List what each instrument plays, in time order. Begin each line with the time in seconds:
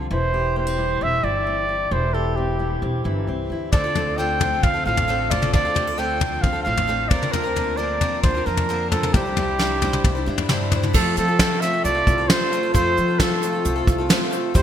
Already playing: steel-string acoustic guitar F2 D3 F3 C4
0.11 upright bass E1, steel-string acoustic guitar E3 E4, trumpet C5
0.34 steel-string acoustic guitar G4
0.56 steel-string acoustic guitar A#3, trumpet C5
0.67 steel-string acoustic guitar C4
0.78 steel-string acoustic guitar G3 E4
1.01 upright bass E1, steel-string acoustic guitar C4, trumpet E5
1.23 upright bass G1, steel-string acoustic guitar E3 E4, trumpet D5
1.47 steel-string acoustic guitar C4
1.69 steel-string acoustic guitar E4
1.91 upright bass E1, steel-string acoustic guitar E3 E4, trumpet C5
2.14 steel-string acoustic guitar G4, trumpet A4
2.36 steel-string acoustic guitar C4, trumpet G4
2.59 steel-string acoustic guitar G3 E4
2.82 upright bass E1, steel-string acoustic guitar C4
3.04 upright bass G1, steel-string acoustic guitar E3 E4
3.27 upright bass C2, steel-string acoustic guitar C4
3.50 upright bass D2, steel-string acoustic guitar E4
3.72 upright bass D2, twelve-string acoustic guitar D3 A3 C4 F4 A4, steel-string acoustic guitar D3 F4, trumpet D5, kick, floor tom
3.84 twelve-string acoustic guitar C4 F4 A4
3.95 twelve-string acoustic guitar A3 C4 F4 A4, steel-string acoustic guitar A4, floor tom
4.18 twelve-string acoustic guitar D3 A3 C4 F4 A4, steel-string acoustic guitar C4, trumpet G5
4.40 steel-string acoustic guitar F3 F4, twelve-string acoustic guitar A3 C4 F4 A4, floor tom
4.63 upright bass D2, steel-string acoustic guitar C4, trumpet F5, kick, floor tom
4.74 twelve-string acoustic guitar C4 F4 A4
4.85 upright bass A1, steel-string acoustic guitar A2 F4, twelve-string acoustic guitar A3 C4 F4 A4, trumpet F5
4.97 floor tom
5.08 twelve-string acoustic guitar D3 A3 C4 F4 A4, steel-string acoustic guitar C4
5.30 twelve-string acoustic guitar A3 C4 F4 A4, steel-string acoustic guitar F4, trumpet D5, floor tom
5.42 twelve-string acoustic guitar C4 F4 A4, mid tom
5.53 upright bass D2, steel-string acoustic guitar D3 F4, twelve-string acoustic guitar D3 A3 C4 F4 A4, trumpet D5, kick, floor tom
5.65 twelve-string acoustic guitar C4 F4 A4
5.75 twelve-string acoustic guitar A3 C4 F4 A4, steel-string acoustic guitar G4, floor tom
5.87 steel-string acoustic guitar A4
5.98 twelve-string acoustic guitar D3 A3 C4 F4 A4, steel-string acoustic guitar C4, trumpet G5
6.20 steel-string acoustic guitar F3 F4, twelve-string acoustic guitar A3 C4 F4 A4, floor tom
6.42 upright bass D2, steel-string acoustic guitar C4, trumpet F5, kick, floor tom
6.53 twelve-string acoustic guitar C4 F4 A4
6.63 upright bass A1, steel-string acoustic guitar A2 F4, twelve-string acoustic guitar A3 C4 F4 A4, trumpet F5
6.77 floor tom
6.88 twelve-string acoustic guitar D3 A3 C4 F4 A4, steel-string acoustic guitar C4
7.09 upright bass D2, steel-string acoustic guitar D3 F3, twelve-string acoustic guitar A#3 C4 F4, trumpet D5, kick, floor tom
7.13 steel-string acoustic guitar C4 D4 A#4, twelve-string acoustic guitar A#4
7.22 twelve-string acoustic guitar C4 F4 A#4, mid tom
7.32 twelve-string acoustic guitar D3 A#3 C4 F4 A#4, steel-string acoustic guitar D4, trumpet A#4, floor tom
7.43 twelve-string acoustic guitar C4 F4 A#4
7.56 twelve-string acoustic guitar A#3 C4 F4 A#4, steel-string acoustic guitar C4, floor tom
7.77 twelve-string acoustic guitar D3 A#3 C4 F4 A#4, steel-string acoustic guitar F3 D4, trumpet D5
8.01 twelve-string acoustic guitar A#3 C4 F4 A#4, steel-string acoustic guitar C4, floor tom
8.23 upright bass D2, steel-string acoustic guitar D3 D4, trumpet C5, kick, floor tom
8.34 twelve-string acoustic guitar C4 F4 A#4
8.46 upright bass F2, twelve-string acoustic guitar A#3 C4 F4 A#4, steel-string acoustic guitar C4, trumpet A#4
8.57 floor tom
8.69 twelve-string acoustic guitar D3 A#3 C4 F4 A#4, steel-string acoustic guitar D4
8.91 steel-string acoustic guitar D3 D4, twelve-string acoustic guitar A#3 C4 F4, trumpet A4, floor tom
8.95 twelve-string acoustic guitar A#4
9.03 twelve-string acoustic guitar C4 F4 A#4, mid tom
9.14 upright bass C2, steel-string acoustic guitar C3 E4, twelve-string acoustic guitar C3 E3 G3 D4 E4 C5, trumpet G4, kick, floor tom
9.25 twelve-string acoustic guitar G3 D4 E4 C5
9.37 twelve-string acoustic guitar G3 D4 E4 C5, steel-string acoustic guitar E4, floor tom
9.59 twelve-string acoustic guitar C3 E3 G3 D4 E4 C5, steel-string acoustic guitar D4, snare
9.81 twelve-string acoustic guitar G3 D4 E4 C5, steel-string acoustic guitar G3 E4, floor tom
9.93 mid tom
10.04 upright bass C2, steel-string acoustic guitar D4, kick, floor tom
10.15 twelve-string acoustic guitar G3 D4 E4 C5
10.26 steel-string acoustic guitar G2 E4, upright bass G2, twelve-string acoustic guitar G3 D4 E4 C5
10.38 floor tom
10.49 twelve-string acoustic guitar C3 E3 G3 D4 E4 C5, steel-string acoustic guitar D4, snare, mid tom
10.72 twelve-string acoustic guitar G3 D4 E4 C5, steel-string acoustic guitar E4, floor tom
10.83 twelve-string acoustic guitar G3 D4 E4 C5, mid tom
10.93 upright bass F2, harmonium C3 A3 F4, twelve-string acoustic guitar F3 A3 C4 F4 A4, french horn F4, trumpet A4, kick, crash
11.16 upright bass F3, twelve-string acoustic guitar A3 C4 F4 A4, trumpet A4, closed hi-hat
11.28 twelve-string acoustic guitar C4 F4 A4
11.39 twelve-string acoustic guitar F3 A3 C4 F4 A4, kick, snare, closed hi-hat
11.61 twelve-string acoustic guitar A3 C4 F4, trumpet E5, snare, closed hi-hat
11.65 twelve-string acoustic guitar A4
11.73 twelve-string acoustic guitar C4 F4 A4
11.84 upright bass C2, twelve-string acoustic guitar A3 C4 F4 A4, trumpet D5, closed hi-hat
11.95 twelve-string acoustic guitar C4 F4 A4
12.07 upright bass C2, kick, closed hi-hat
12.18 twelve-string acoustic guitar C4 F4 A4
12.28 twelve-string acoustic guitar F3 A3 C4 F4 A4, trumpet C5, snare, closed hi-hat
12.52 twelve-string acoustic guitar A3 C4 F4 A4, closed hi-hat
12.63 twelve-string acoustic guitar C4 F4 A4
12.74 upright bass F2, twelve-string acoustic guitar F3 A3 C4 F4 A4, trumpet C5, kick, closed hi-hat
12.97 upright bass F3, twelve-string acoustic guitar A3 C4 F4 A4, closed hi-hat
13.08 twelve-string acoustic guitar C4 F4 A4
13.19 twelve-string acoustic guitar F3 A3 C4 F4 A4, trumpet A4, kick, snare, closed hi-hat
13.42 twelve-string acoustic guitar A3 C4 F4 A4, closed hi-hat
13.53 twelve-string acoustic guitar C4 F4 A4
13.65 upright bass C2, twelve-string acoustic guitar A3 C4 F4 A4, closed hi-hat
13.76 twelve-string acoustic guitar C4 F4 A4
13.87 upright bass C2, kick, closed hi-hat
13.98 twelve-string acoustic guitar C4 F4 A4
14.09 twelve-string acoustic guitar F3 A3 C4 F4 A4, snare, closed hi-hat
14.31 twelve-string acoustic guitar A3 C4 F4 A4, closed hi-hat
14.54 upright bass E2, twelve-string acoustic guitar E3 G3 C4 E4 C5, harmonium E3 G3, french horn G4, trumpet C5, kick, closed hi-hat